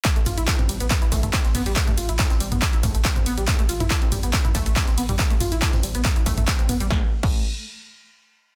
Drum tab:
CC |----------------|----------------|----------------|----------------|
RD |x-x-x-x-x-x-x-x-|x-x-x-x-x-x-x-x-|x-x-x-x-x-x-x-x-|x-x-x-x-x-x-x-x-|
HH |xxoxxxoxxxoxxxox|xxoxxxoxxxoxxxox|xxoxxxoxxxoxxxox|xxoxxxoxxxoxxxox|
TB |x-x-x-x-x-x-x---|x-x-x-x-x-x-x-x-|x-x-x-x-x-x-x---|x-x-x-x-x-x-x-x-|
SH |xxxxx-xxxxxxxxxx|xxxxxxxxxxxxxxxx|xxxxx-xxxxxxxxxx|xxxxxxxxxxxxxxxx|
CP |x---x---x---x---|x---x---x---x---|x---x---x---x---|x---x---x---x---|
SD |----o-----o-oo--|----oo------o---|----o-----o-oo--|----oo------o---|
T2 |--o--o--o--o--o-|-o--o--o--o--o--|o--o--o--o--o--o|--o--o--o--o--o-|
BD |o---o---o-o-o---|o---o---o-o-o---|o---o---o-o-o---|o---o---o-o-o---|

CC |---x------------|
RD |----------------|
HH |----------------|
TB |----------------|
SH |----------------|
CP |----------------|
SD |o---------------|
T2 |----------------|
BD |o--o------------|